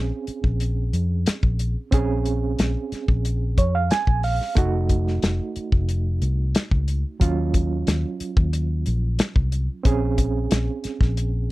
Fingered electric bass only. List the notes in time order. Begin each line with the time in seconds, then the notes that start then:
Already playing: A#1
0.28 muted fingered electric bass stroke
0.44 A#1
0.93 F2
1.27 muted fingered electric bass stroke
1.43 A#1
1.92 A#1
2.59 A#1
2.92 muted fingered electric bass stroke
3.08 A#1
3.58 F2
3.91 muted fingered electric bass stroke
4.07 A#1
4.57 F1
5.23 F1
5.56 muted fingered electric bass stroke
5.72 F1
6.22 C2
6.55 muted fingered electric bass stroke
6.71 C#2
7.21 D#2
7.88 D#2
8.21 muted fingered electric bass stroke
8.37 D#2
8.87 A#1
9.36 C2
9.85 A#1
10.52 A#1
10.85 muted fingered electric bass stroke
11.01 A#1